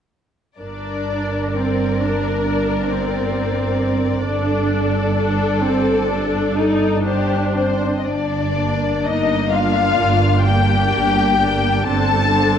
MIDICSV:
0, 0, Header, 1, 6, 480
1, 0, Start_track
1, 0, Key_signature, -2, "minor"
1, 0, Tempo, 966184
1, 302, Time_signature, 4, 2, 24, 8
1, 778, Tempo, 904977
1, 3178, Tempo, 983607
1, 4618, Tempo, 933126
1, 6441, End_track
2, 0, Start_track
2, 0, Title_t, "Violin section"
2, 0, Program_c, 0, 48
2, 298, Note_on_c, 0, 74, 34
2, 758, Note_off_c, 0, 74, 0
2, 774, Note_on_c, 0, 74, 36
2, 3626, Note_off_c, 0, 74, 0
2, 3645, Note_on_c, 0, 72, 39
2, 3884, Note_off_c, 0, 72, 0
2, 3890, Note_on_c, 0, 72, 46
2, 4087, Note_off_c, 0, 72, 0
2, 4105, Note_on_c, 0, 75, 27
2, 4138, Note_on_c, 0, 74, 45
2, 4140, Note_off_c, 0, 75, 0
2, 4617, Note_off_c, 0, 74, 0
2, 4621, Note_on_c, 0, 75, 52
2, 4858, Note_on_c, 0, 77, 56
2, 4866, Note_off_c, 0, 75, 0
2, 5343, Note_on_c, 0, 79, 59
2, 5344, Note_off_c, 0, 77, 0
2, 6051, Note_off_c, 0, 79, 0
2, 6072, Note_on_c, 0, 81, 62
2, 6441, Note_off_c, 0, 81, 0
2, 6441, End_track
3, 0, Start_track
3, 0, Title_t, "Violin section"
3, 0, Program_c, 1, 48
3, 304, Note_on_c, 1, 70, 34
3, 2189, Note_off_c, 1, 70, 0
3, 2216, Note_on_c, 1, 69, 46
3, 3651, Note_on_c, 1, 67, 38
3, 3652, Note_off_c, 1, 69, 0
3, 3891, Note_off_c, 1, 67, 0
3, 3898, Note_on_c, 1, 60, 41
3, 4124, Note_off_c, 1, 60, 0
3, 4137, Note_on_c, 1, 62, 38
3, 4615, Note_on_c, 1, 63, 47
3, 4617, Note_off_c, 1, 62, 0
3, 4862, Note_off_c, 1, 63, 0
3, 4865, Note_on_c, 1, 65, 49
3, 5348, Note_off_c, 1, 65, 0
3, 5351, Note_on_c, 1, 67, 47
3, 6065, Note_on_c, 1, 69, 53
3, 6069, Note_off_c, 1, 67, 0
3, 6441, Note_off_c, 1, 69, 0
3, 6441, End_track
4, 0, Start_track
4, 0, Title_t, "Viola section"
4, 0, Program_c, 2, 48
4, 297, Note_on_c, 2, 62, 36
4, 757, Note_off_c, 2, 62, 0
4, 773, Note_on_c, 2, 60, 35
4, 1016, Note_on_c, 2, 62, 36
4, 1018, Note_off_c, 2, 60, 0
4, 1242, Note_off_c, 2, 62, 0
4, 1248, Note_on_c, 2, 62, 36
4, 1485, Note_off_c, 2, 62, 0
4, 1491, Note_on_c, 2, 60, 42
4, 2204, Note_on_c, 2, 62, 45
4, 2207, Note_off_c, 2, 60, 0
4, 2674, Note_off_c, 2, 62, 0
4, 2686, Note_on_c, 2, 62, 48
4, 2927, Note_off_c, 2, 62, 0
4, 2937, Note_on_c, 2, 60, 48
4, 3179, Note_on_c, 2, 62, 45
4, 3181, Note_off_c, 2, 60, 0
4, 3407, Note_off_c, 2, 62, 0
4, 3415, Note_on_c, 2, 63, 49
4, 3650, Note_off_c, 2, 63, 0
4, 3653, Note_on_c, 2, 62, 44
4, 4033, Note_off_c, 2, 62, 0
4, 4378, Note_on_c, 2, 62, 35
4, 4379, Note_on_c, 2, 58, 35
4, 4854, Note_off_c, 2, 58, 0
4, 4854, Note_off_c, 2, 62, 0
4, 4860, Note_on_c, 2, 58, 36
4, 4862, Note_on_c, 2, 62, 40
4, 5336, Note_off_c, 2, 58, 0
4, 5336, Note_off_c, 2, 62, 0
4, 5345, Note_on_c, 2, 58, 39
4, 5345, Note_on_c, 2, 62, 38
4, 5819, Note_off_c, 2, 58, 0
4, 5820, Note_off_c, 2, 62, 0
4, 5825, Note_on_c, 2, 58, 39
4, 5827, Note_on_c, 2, 62, 40
4, 6059, Note_off_c, 2, 58, 0
4, 6060, Note_off_c, 2, 62, 0
4, 6064, Note_on_c, 2, 60, 39
4, 6066, Note_on_c, 2, 62, 37
4, 6292, Note_off_c, 2, 60, 0
4, 6294, Note_off_c, 2, 62, 0
4, 6299, Note_on_c, 2, 60, 38
4, 6300, Note_on_c, 2, 62, 38
4, 6441, Note_off_c, 2, 60, 0
4, 6441, Note_off_c, 2, 62, 0
4, 6441, End_track
5, 0, Start_track
5, 0, Title_t, "Cello section"
5, 0, Program_c, 3, 48
5, 301, Note_on_c, 3, 43, 34
5, 2187, Note_off_c, 3, 43, 0
5, 2209, Note_on_c, 3, 43, 45
5, 4019, Note_off_c, 3, 43, 0
5, 4140, Note_on_c, 3, 43, 45
5, 4562, Note_off_c, 3, 43, 0
5, 4619, Note_on_c, 3, 43, 44
5, 5049, Note_off_c, 3, 43, 0
5, 5102, Note_on_c, 3, 43, 41
5, 5532, Note_off_c, 3, 43, 0
5, 5587, Note_on_c, 3, 43, 45
5, 6010, Note_off_c, 3, 43, 0
5, 6064, Note_on_c, 3, 43, 51
5, 6441, Note_off_c, 3, 43, 0
5, 6441, End_track
6, 0, Start_track
6, 0, Title_t, "Double bass section"
6, 0, Program_c, 4, 48
6, 303, Note_on_c, 4, 31, 36
6, 2189, Note_off_c, 4, 31, 0
6, 2205, Note_on_c, 4, 31, 46
6, 4017, Note_off_c, 4, 31, 0
6, 4138, Note_on_c, 4, 31, 43
6, 4561, Note_off_c, 4, 31, 0
6, 4621, Note_on_c, 4, 31, 39
6, 5050, Note_off_c, 4, 31, 0
6, 5103, Note_on_c, 4, 31, 50
6, 5532, Note_off_c, 4, 31, 0
6, 5592, Note_on_c, 4, 31, 45
6, 6013, Note_off_c, 4, 31, 0
6, 6067, Note_on_c, 4, 31, 46
6, 6441, Note_off_c, 4, 31, 0
6, 6441, End_track
0, 0, End_of_file